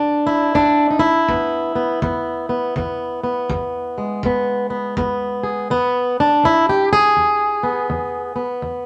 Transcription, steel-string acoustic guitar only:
0.00 0.49 E2 medium
0.00 0.54 D4 medium
0.27 0.98 E4 medium
0.55 1.23 E2 medium
0.55 0.90 D4 medium
0.91 1.00 D#4 medium
0.99 5.43 E4 medium
1.29 1.97 E2 medium
1.29 1.75 B3 soft
1.75 2.02 B3 soft
2.02 2.70 E2 medium
2.02 2.49 B3 soft
2.49 2.77 B3 soft
2.77 3.44 E2 medium
2.77 3.22 B3 soft
3.24 4.24 B3 soft
3.50 4.18 E2 medium
3.98 5.68 G#3 soft
4.25 4.92 E2 medium
4.25 4.69 B3 soft
4.70 4.97 B3 soft
4.97 5.65 E2 medium
4.97 5.70 B3 soft
5.43 5.68 G#4 soft
5.70 6.38 E2 medium
5.70 6.20 B3 loud
6.20 6.44 D4 medium
6.44 7.11 E2 medium
6.44 6.69 E4 loud
6.69 6.92 G4 medium
6.93 8.39 G#4 loud
7.17 7.85 E2 medium
7.63 8.35 B3 soft
7.90 8.58 E2 medium
8.36 8.86 B3 soft
8.62 8.86 E2 medium

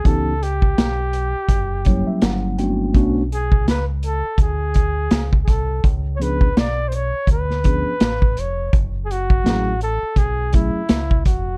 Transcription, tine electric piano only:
0.04 0.32 E3 medium
0.04 0.32 B3 medium
0.04 0.32 C#4 medium
0.04 0.33 D#4 medium
0.04 0.33 G4 medium
1.85 2.89 F#3 medium
1.85 2.88 G3 medium
1.85 2.88 A#3 medium
1.85 2.57 C#4 medium
1.85 2.89 E4 medium
1.85 2.06 C#5 medium
2.07 2.21 E5 medium
2.22 2.56 F#5 medium
2.57 2.93 A3 medium
2.57 2.93 B3 medium
2.57 2.94 C#4 medium
2.57 2.95 D4 medium
2.57 2.96 F#4 medium
2.57 2.92 G5 medium
2.94 3.21 A3 medium
2.94 3.22 B3 medium
2.94 3.22 C#4 medium
2.94 3.22 D4 medium
2.94 3.23 F#4 medium
6.19 6.46 F3 medium
6.19 6.47 B3 medium
6.19 6.47 C#4 soft
6.19 6.47 D4 medium
6.19 6.48 G#4 medium
7.64 7.91 F3 medium
7.64 7.91 B3 medium
7.64 7.92 C#4 medium
7.64 7.92 D4 medium
7.64 7.92 G#4 medium
9.44 9.71 F#3 medium
9.44 9.72 A3 medium
9.44 9.72 C#4 medium
9.44 9.72 E4 medium
9.44 9.73 G#4 medium
10.53 10.80 F#3 medium
10.53 10.80 A3 medium
10.53 10.81 C#4 medium
10.53 10.81 E4 medium
10.53 10.81 G#4 medium

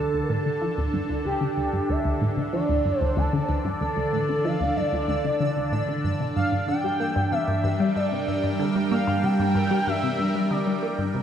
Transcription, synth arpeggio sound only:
0.14 0.20 D2 medium
0.30 0.40 A2 loud
0.46 0.52 D3 medium
0.62 0.68 F3 loud
0.78 0.88 D2 loud
0.93 1.00 G2 medium
1.09 1.24 D2 medium
1.25 1.36 D2 loud
1.41 1.51 D3 loud
1.57 1.67 D2 medium
1.73 1.83 G2 medium
1.90 1.96 D2 medium
2.05 2.11 D2 medium
2.21 2.31 A2 loud
2.37 2.43 D3 medium
2.53 2.59 F3 loud
2.69 2.79 D2 loud
2.85 2.91 G2 medium
3.01 3.16 D2 medium
3.17 3.27 D2 loud
3.33 3.43 D3 loud
3.49 3.59 D2 medium
3.65 3.75 G2 medium
3.81 3.87 D2 medium
3.97 4.03 D2 medium
4.13 4.23 A2 loud
4.29 4.35 D3 medium
4.45 4.51 F3 loud
4.61 4.71 D2 loud
4.76 4.83 G2 medium
4.93 5.07 D2 medium
5.08 5.19 D2 loud
5.24 5.31 D3 medium
5.40 5.56 D3 loud
5.56 5.72 D2 medium
5.72 5.83 A2 loud
5.88 6.04 D3 medium
6.04 6.14 G2 medium
6.20 6.30 C3 medium
6.36 6.42 G2 medium
6.52 6.58 G2 medium
6.68 6.78 D3 loud
6.84 6.90 G3 medium
7.00 7.06 A#3 loud
7.16 7.26 G2 loud
7.32 7.38 C3 medium
7.48 7.63 G2 medium
7.64 7.74 G2 loud
7.80 7.90 G3 loud
7.96 8.06 G2 medium
8.12 8.22 C3 medium
8.28 8.34 G2 medium
8.44 8.50 G2 medium
8.60 8.70 D3 loud
8.76 8.82 G3 medium
8.91 8.98 A#3 loud
9.07 9.18 G2 loud
9.23 9.30 C3 medium
9.40 9.54 G2 medium
9.55 9.65 G2 loud
9.71 9.81 G3 loud
9.87 9.97 G2 medium
10.03 10.13 C3 medium
10.19 10.25 G2 medium
10.35 10.41 G2 medium
10.51 10.61 D3 loud
10.67 10.73 G3 medium
10.83 10.89 A#3 loud
10.99 11.09 G2 loud
11.15 11.21 C3 medium

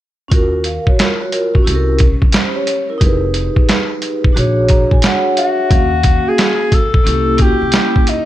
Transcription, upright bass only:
0.32 0.77 D#2 medium
1.67 2.12 C2 medium
2.22 2.32 C2 medium
3.01 3.47 F1 loud
4.36 4.81 A#1 medium
4.92 5.01 A#1 medium
5.71 6.16 D#2 medium
7.06 7.51 C2 medium
7.62 7.71 C2 medium

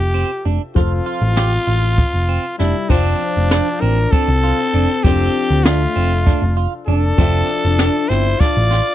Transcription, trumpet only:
0.00 0.45 G4 medium
0.76 2.55 F4 loud
2.59 2.91 E4 medium
2.90 3.83 D4 medium
3.81 4.13 A#4 medium
4.11 5.05 A4 medium
5.03 5.66 G4 loud
5.64 6.60 F4 medium
6.87 8.10 A4 loud
8.09 8.42 C5 medium
8.40 8.95 D5 loud

